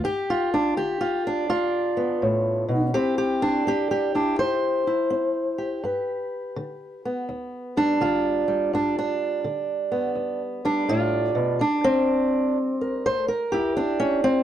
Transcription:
0.04 G2 G4
0.30 F4
0.54 D4
0.77 D3 G4
1.01 F4
1.27 D4
1.49 D2 F4
1.97 B3
2.22 A2
2.68 B2
2.94 C3 C4 E4 G4
3.18 G4
3.42 D4
3.67 C4 G4
3.91 G4
4.15 D4 E4
4.39 G2 C5
4.87 E4
5.10 C4
5.58 G4
5.84 G2 B4
6.56 D3
7.05 B3
7.29 D2
7.77 G3 D4
8.01 D3 F4
8.48 G3
8.73 G2 D4
8.98 D4
9.44 D3
9.92 B3
10.15 D2
10.65 G3 D4
10.89 A2 F4
11.35 B2
11.59 C3 D4
11.84 C4
12.81 A#4
13.06 G2 C5
13.28 A#4
13.52 E4 G4
13.77 C4 D4
14.00 C#4
14.24 C4

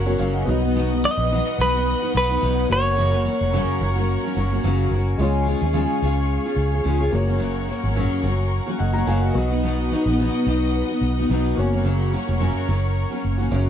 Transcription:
Already playing: F#1 A#3 F#4 A#4 C#5 F#5 C#6
0.06 F#3 A#3 C#4 F#4 A#4 C#5
0.18 F#1 F#2 C#3 F#3 A#3 C#4 F#4 C#5 F5
0.34 D#5 F#5
0.45 B1 F#3 B3 D#4 F#4 B4 D#5 F#5 D#6
0.49 F#4
0.62 B3 D#4 F#4
0.75 B2 F#3 B3 D#4 F#4
0.91 B3 D#4 F#4
1.04 F#3 B3 D#4 F#4 D#5
1.18 A#1
1.31 B2 F#3 B3 D#4 F#4
1.58 B1 F#3 B3 D#4 F#4 B4
1.74 B3 D#4 F#4
2.02 B3 D#4 F#4
2.13 B1 F#3 B3 D#4 F#4
2.17 B4
2.28 B3 D#4 F#4
2.41 B1 B2 F#3 B3 D#4 F#4
2.68 F#1 F#3 A#3 C#4 F#4 A#4 C#5 C#6
2.73 C#5
2.97 F#2 C#3 F#3 A#3 C#4 F#4
3.12 F#3 A#3 C#4 F#4
3.24 F#3 A#3 C#4 F#4
3.41 F1
3.52 F#2 C#3 F#3 A#3 C#4 F#4
3.79 F#1 F#3 A#3 C#4 F#4
3.96 F#3 A#3 C#4 F#4
4.23 F#3 A#3 C#4 F#4
4.35 F#1 F#3 A#3 C#4 F#4
4.50 F#3 A#3 C#4 F#4
4.63 F#1 F#2 C#3 F#3 A#3 C#4 F#4
4.91 F#1 F#3 A#3 C#4 F#4
5.17 C#2 C#3 G#3 C#4 F4 G#4 C#5 F5 C#6
5.46 G#3 C#4 F4 G#4
5.61 D#2 C#4 F4 G#4
5.73 C#3 G#3 C#4 F4 G#4
6.01 C#2 G#3 C#4 F4 G#4
6.44 C#4 F4 G#4
6.56 C#2
6.72 C#4 F4 G#4
6.84 C#2 C#3 G#3 C#4 F4 G#4
6.99 C#4 F4 G#4
7.11 F#1 F#3 A#3 C#4 F#4 A#4 F#5 C#6
7.15 C#5
7.28 F#3 A#3 C#4 F#4
7.39 F#2 C#3 F#3 A#3 C#4 F#4
7.68 F#3 A#3 C#4 F#4
7.83 G#1 F#3 A#3 C#4 F#4
7.95 F#2 C#3 F#3 A#3 C#4 F#4
8.23 F#1 F#3 A#3 C#4 F#4
8.66 F#3 A#3 C#4 F#4
8.79 F#1 D#5 F#5
8.93 F#3 A#3 C#4 F#4 F#5 A#5
9.07 F#1 F#2 C#3 F#3 A#3 C#4 F#4 F5 G#5
9.22 D#5 F#5
9.33 B1 F#3 B3 D#4 F#4 B4 D#5 D#6
9.38 D#5
9.50 B3 D#4 F#4
9.63 B2 F#3 B3 D#4 F#4
9.91 F#3 B3 D#4 F#4
10.06 A#1 B3 D#4 F#4
10.18 B2 F#3 B3 D#4 F#4
10.45 B1 F#3 B3 D#4 F#4
10.89 B3 D#4 F#4
11.01 B1
11.17 B3 D#4 F#4
11.29 B1 B2 F#3 B3 D#4 F#4
11.55 F#1 F#3 A#3 F#4 A#4 C#5 C#6
11.59 C#4 F#4 C#5
11.72 F#3 A#3 C#4 F#4
11.84 F#2 C#3 F#3 A#3 C#4 F#4
12.12 F#3 A#3 C#4 F#4
12.27 F1 F#3 A#3 C#4 F#4
12.40 F#2 C#3 F#3 A#3 C#4 F#4
12.68 F#1 F#3 A#3 C#4 F#4
13.10 F#3 A#3 C#4 F#4
13.24 F#1
13.38 F#3 A#3 C#4 F#4
13.51 F#1 F#2 C#3 F#3 A#3 C#4 F#4 C#5

